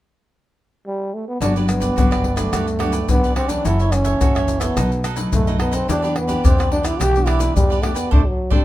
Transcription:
0.87 trombone G3
1.14 trombone A3
1.28 trombone B3
1.41 upright bass G1, nylon-string guitar G2 F#3 B3 D4, trombone D4, cavaquinho F#4 G4 B4 D5, pandeiro, maracas, surdo
1.56 nylon-string guitar F#3 B3 D4, cavaquinho G4 B4 D5, pandeiro, maracas
1.68 trombone B3, muted cavaquinho stroke, pandeiro, tamborim, maracas
1.80 cavaquinho G4 B4 D5, pandeiro, maracas, surdo
1.96 upright bass G1, nylon-string guitar D3 F#3 B3 D4, cavaquinho F#4 G4 B4 D5, pandeiro, maracas, surdo
2.11 cavaquinho G4 B4 D5, pandeiro, tamborim, maracas
2.24 pandeiro
2.36 nylon-string guitar F#3 B3 D4, trombone A3, cavaquinho G4 B4 D5, pandeiro, tamborim, maracas, surdo
2.52 upright bass D2, nylon-string guitar G2, cavaquinho F#4 G4 B4 D5, pandeiro, tamborim, maracas, surdo
2.67 muted cavaquinho stroke, pandeiro, maracas
2.79 nylon-string guitar F#3 B3 D4, cavaquinho F#4 G4 B4 D5, pandeiro, tamborim
2.92 cavaquinho G4 B4 D5, pandeiro, maracas
3.09 upright bass D2, nylon-string guitar D3 F#3 B3 D4, trombone B3, pandeiro, maracas, surdo
3.24 cavaquinho G4 B4 D5, pandeiro, maracas, surdo
3.36 trombone C4, cavaquinho F#4 G4 B4 D5, pandeiro, tamborim
3.49 nylon-string guitar E3 A3 C#4, trombone D4, cavaquinho G4 B4 D5, pandeiro, maracas, surdo
3.65 upright bass F#1, nylon-string guitar F#2, trombone E4, cavaquinho F#4 A4 C#5 E5, pandeiro, maracas, surdo
3.79 cavaquinho A4 C#5 E5, pandeiro, maracas
3.92 nylon-string guitar E3 A3 C#4, trombone C#4, muted cavaquinho stroke, pandeiro, tamborim, maracas
4.04 cavaquinho A4 C#5 E5, pandeiro, maracas, surdo
4.21 upright bass F#1, nylon-string guitar C#3, cavaquinho F#4 A4 C#5 E5, pandeiro, maracas, surdo
4.35 nylon-string guitar E3 A3 C#4, cavaquinho A4 C#5 E5, pandeiro, tamborim, maracas
4.48 pandeiro, maracas
4.60 trombone B3, cavaquinho A4 C#5 E5, pandeiro, tamborim, maracas, surdo
4.77 upright bass B1, nylon-string guitar B2 F#3 A3 D#4, cavaquinho D#4 A4 B4 D#5, pandeiro, tamborim, maracas, surdo
4.92 muted cavaquinho stroke, pandeiro, maracas
5.04 cavaquinho D#4 A4 B4 D#5, pandeiro, tamborim, maracas
5.16 nylon-string guitar F#3 A3 D#4, cavaquinho A4 B4 D#5, pandeiro, maracas
5.33 upright bass B1, nylon-string guitar F#2, trombone A3, pandeiro, maracas, surdo
5.47 nylon-string guitar F#3 A3 D#4, cavaquinho A4 B4 D#5, pandeiro, maracas, surdo
5.59 trombone B3, cavaquinho D#4 A4 B4 D#5, pandeiro, tamborim
5.71 trombone C4, cavaquinho A4 B4 D#5, pandeiro, maracas, surdo
5.88 upright bass E2, nylon-string guitar E3 B3 D4 G4, trombone D4, cavaquinho E4 G4 B4 D5, pandeiro, maracas, surdo
6.02 nylon-string guitar B3 D4 G4, cavaquinho G4 B4 D5, pandeiro, maracas
6.15 trombone B3, muted cavaquinho stroke, pandeiro, tamborim
6.27 nylon-string guitar B3 D4 G4, cavaquinho G4 B4 D5, pandeiro, maracas, surdo
6.43 upright bass E2, nylon-string guitar B2, trombone C4, cavaquinho E4 G4 B4 D5, pandeiro, maracas, surdo
6.58 cavaquinho G4 B4 D5, pandeiro, tamborim, maracas
6.72 nylon-string guitar B3 D4 G4, trombone D4, pandeiro
6.83 trombone E4, cavaquinho G4 B4 D5, pandeiro, tamborim, maracas, surdo
6.99 upright bass B1, nylon-string guitar E3, cavaquinho E4 G4 B4 D5, trombone G4, pandeiro, tamborim, maracas, surdo
7.14 nylon-string guitar B3 D4 G4, muted cavaquinho stroke, pandeiro, maracas
7.26 cavaquinho E4 G4 B4 D5, trombone E4, pandeiro, tamborim, surdo
7.39 nylon-string guitar B3 D4 G4, cavaquinho G4 B4 D5, pandeiro, maracas
7.56 upright bass E2, nylon-string guitar B2, trombone G3, pandeiro, maracas, surdo
7.70 cavaquinho G4 B4 D5, pandeiro, maracas, surdo
7.82 trombone A3, nylon-string guitar B3 D4 G4, cavaquinho E4 G4 B4 D5, pandeiro, tamborim
7.94 trombone B3, cavaquinho G4 B4 D5, pandeiro, maracas, surdo
8.11 upright bass D2, nylon-string guitar A3 C4 D4, trombone A3, cavaquinho A4 C5 D5, surdo
8.27 trombone F#3
8.50 upright bass D2, trombone G3, nylon-string guitar A3 C4 D4, cavaquinho A4 C5 D5, surdo

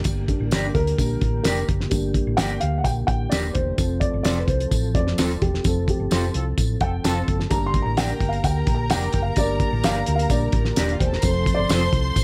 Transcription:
0.04 fingered electric bass G1, tonewheel organ D3 A#3 G4, kick, closed hi-hat, tambourine
0.28 upright piano G3 A#3 D4, kick, closed hi-hat
0.40 fingered electric bass A1
0.51 fingered electric bass G1, clean electric guitar D4 G4 A#4 D5, snare, closed hi-hat, tambourine
0.75 fingered electric bass D2, upright piano A#4, kick, closed hi-hat
0.87 closed hi-hat
0.98 fingered electric bass A#1, upright piano G3 A#3 D4, kick, closed hi-hat, tambourine
1.21 fingered electric bass A1, kick, closed hi-hat
1.44 fingered electric bass F1, clean electric guitar D4 G4 A#4 D5, upright piano A#4, snare, closed hi-hat, tambourine
1.57 closed hi-hat
1.69 fingered electric bass F#1, kick, closed hi-hat
1.81 snare
1.90 fingered electric bass G1, upright piano G3 A#3 D4, kick, closed hi-hat, tambourine
2.14 kick, closed hi-hat
2.27 fingered electric bass A1
2.37 fingered electric bass G1, clean electric guitar D4 G4 A#4 D5, upright piano G5, snare, closed hi-hat, tambourine
2.60 fingered electric bass D2, upright piano F5, closed hi-hat
2.78 upright piano F#5
2.84 fingered electric bass A#1, upright piano G5, kick, closed hi-hat, tambourine
3.07 fingered electric bass A1, upright piano G5, kick, closed hi-hat
3.30 fingered electric bass D#1, clean electric guitar D4 G4 A#4 D5, upright piano D5, snare, closed hi-hat, tambourine
3.53 fingered electric bass E1, upright piano C5, kick, closed hi-hat
3.76 fingered electric bass F1, upright piano F3 A3 C4, tonewheel organ F3 C4 A4, kick, closed hi-hat, tambourine
4.00 upright piano D5, kick, closed hi-hat
4.14 fingered electric bass G1
4.23 fingered electric bass F1, clean electric guitar C4 F4 A4 C5, upright piano D5, snare, closed hi-hat, tambourine
4.39 upright piano B4
4.47 fingered electric bass C2, upright piano C5, kick, closed hi-hat
4.60 closed hi-hat
4.71 fingered electric bass A1, kick, closed hi-hat, tambourine
4.94 fingered electric bass F1, upright piano F3 A3 C4 D5, kick, closed hi-hat
5.07 snare
5.18 fingered electric bass D#1, clean electric guitar C4 F4 A4 C5, snare, closed hi-hat, tambourine
5.30 closed hi-hat
5.42 fingered electric bass E1, upright piano G4, kick, closed hi-hat
5.54 snare
5.64 fingered electric bass F1, upright piano F3 A3 C4 A4, kick, closed hi-hat, tambourine
5.88 upright piano G4, kick, closed hi-hat
5.99 fingered electric bass G1
6.11 fingered electric bass F1, clean electric guitar C4 F4 A4 C5, snare, closed hi-hat, tambourine
6.34 fingered electric bass C2, horn section C4 F4 A4, closed hi-hat
6.57 fingered electric bass A1, kick, closed hi-hat, tambourine
6.81 fingered electric bass F1, horn section C4 F4 A4, upright piano G5, kick, closed hi-hat
7.04 fingered electric bass F1, clean electric guitar C4 F4 A4 C5, horn section C4 F4 A4, upright piano A5, snare, closed hi-hat, tambourine
7.28 fingered electric bass F#1, kick, closed hi-hat
7.40 snare
7.50 fingered electric bass G1, tonewheel organ D3 A#3 G4, upright piano G3 A#3 D4 A#5, violin section A#4 A#5, kick, closed hi-hat, tambourine
7.66 upright piano C6
7.74 kick, closed hi-hat
7.82 fingered electric bass A1, upright piano A#5
7.97 clean electric guitar D4 G4 A#4 D5, upright piano G5, snare, closed hi-hat, tambourine
8.20 fingered electric bass G1, kick, closed hi-hat
8.29 upright piano F5
8.33 closed hi-hat
8.44 fingered electric bass D2, upright piano G5, kick, closed hi-hat, tambourine
8.67 fingered electric bass A#1, kick, closed hi-hat
8.75 upright piano A#5
8.90 fingered electric bass F1, clean electric guitar D4 G4 A#4 D5, upright piano G5, snare, closed hi-hat, tambourine
9.02 closed hi-hat
9.13 fingered electric bass F#1, kick, closed hi-hat
9.22 upright piano F5
9.36 fingered electric bass G1, upright piano G3 A#3 D4 D5, kick, closed hi-hat, tambourine
9.60 kick, closed hi-hat
9.72 fingered electric bass A1
9.83 fingered electric bass G1, clean electric guitar D4 G4 A#4 D5, upright piano F5, snare, closed hi-hat, tambourine
10.06 fingered electric bass D2, closed hi-hat
10.15 upright piano F5, closed hi-hat
10.30 fingered electric bass A#1, upright piano G3 A#3 D4 D5, kick, closed hi-hat, tambourine
10.52 fingered electric bass A1, kick, closed hi-hat
10.65 snare
10.76 fingered electric bass D#1, clean electric guitar D4 G4 A#4 D5, snare, closed hi-hat, tambourine
10.89 violin section F4 F5, closed hi-hat
11.00 fingered electric bass E1, violin section G4 G5, upright piano C5, kick, closed hi-hat
11.07 violin section A4 A5
11.13 violin section A#4 A#5, snare
11.22 fingered electric bass F1, upright piano F3 A3 C4, tonewheel organ F3 C4 A4, violin section C5 C6, kick, closed hi-hat, tambourine
11.46 kick, closed hi-hat
11.54 fingered electric bass G1, upright piano D5
11.69 fingered electric bass F1, clean electric guitar C4 F4 A4 C5, upright piano C5, snare, closed hi-hat, tambourine
11.93 fingered electric bass C2, kick, closed hi-hat
12.16 fingered electric bass A1, kick, closed hi-hat, tambourine

